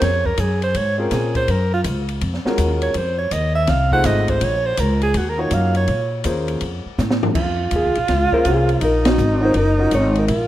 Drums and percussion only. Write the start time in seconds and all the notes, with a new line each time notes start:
0.01 kick, snare, ride
0.25 kick
0.38 kick, hi-hat pedal, ride
0.62 ride
0.74 kick, ride
1.11 kick, snare, hi-hat pedal, ride
1.35 kick, ride
1.48 kick, ride
1.84 kick, hi-hat pedal, ride
2.09 ride
2.21 kick, ride
2.34 snare
2.46 snare
2.58 kick, hi-hat pedal, ride
2.82 ride
2.94 kick, ride
3.31 kick, hi-hat pedal, ride
3.67 kick, snare, ride
3.92 kick
4.04 snare, hi-hat pedal, ride
4.28 kick, ride
4.41 kick, ride
4.77 kick, hi-hat pedal, ride
5.02 ride
5.14 kick, ride
5.51 kick, hi-hat pedal, ride
5.75 ride
5.88 kick, ride
6.24 kick, hi-hat pedal, ride
6.48 ride
6.61 kick, ride
6.98 snare, hi-hat pedal
7.11 snare
7.23 floor tom
7.35 kick, crash
7.71 kick, hi-hat pedal, ride
7.95 ride
8.08 kick, snare, ride
8.33 kick
8.45 hi-hat pedal, ride
8.69 ride
8.81 kick, ride
9.05 snare, ride
9.18 hi-hat pedal
9.54 kick, ride
9.91 kick, hi-hat pedal, ride
10.15 ride
10.28 kick, ride